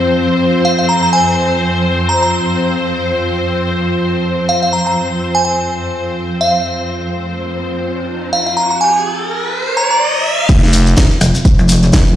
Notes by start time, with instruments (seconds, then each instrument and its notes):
Already playing: string section F2 F3 C4 C5, ambient pad F4 C5 F5
0.65 synth bell F5
0.79 synth bell F5
0.89 synth bell A#5
1.03 synth bell A#5
1.13 synth bell G#5
2.09 synth bell A#5
2.23 synth bell A#5
4.49 synth bell F5
4.63 synth bell F5
4.73 synth bell A#5
4.87 synth bell A#5
5.35 synth bell G#5
5.45 synth bell G#5
6.41 synth bell F5
6.65 riser
8.33 synth bell F5
8.47 synth bell F5
8.57 synth bell A#5
8.71 synth bell A#5
8.81 synth bell G#5
9.77 synth bell A#5
9.91 synth bell A#5
10.49 fm bass F1, string section F3 C4 F4, kick, closed hi-hat, crash, shekere
10.63 snare, shekere
10.73 open hi-hat, shekere
10.86 closed hi-hat, shekere
10.97 kick, snare, closed hi-hat, shekere
11.10 shekere
11.21 wobble bass F1, open hi-hat, shekere
11.35 closed hi-hat, shekere
11.45 kick, closed hi-hat, shekere
11.58 wobble bass F1, shekere
11.69 open hi-hat, shekere
11.83 closed hi-hat, shekere
11.93 wobble bass F1, kick, snare, closed hi-hat, shekere
12.07 shekere